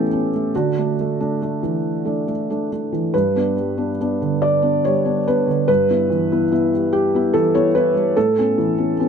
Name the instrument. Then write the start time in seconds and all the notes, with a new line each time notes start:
felt piano
Already playing: E3 A3 B3 C#4 G4
0.13 B3 C#4
0.35 A3
0.55 D3 F#4
0.78 A3 D4
1.00 A3
1.20 A3 D4
1.42 A3 D4
1.63 E3
2.05 A3 D4
2.28 A3
2.50 A3 D4
2.72 A3 D4
2.92 E3
3.14 G2 B4
3.36 B3 D4
3.57 G3
3.77 B3 D4
4.01 B3 D4
4.22 D3
4.42 D5
4.62 B3 D4
4.85 G3 C#5
5.05 B3 D4
5.28 B3 D4 B4
5.47 D3
5.68 G2 B4
5.90 B3 E4
6.10 E3
6.32 B3 E4
6.52 B3 E4
6.74 G3
6.93 G4
7.15 B3 E4
7.33 E3 A4
7.55 B3 E4 C#5
7.75 B3 E4 B4
7.94 G3
8.17 A2 A4
8.38 B3 C#4
8.58 E3
8.78 B3 C#4
9.00 B3 C#4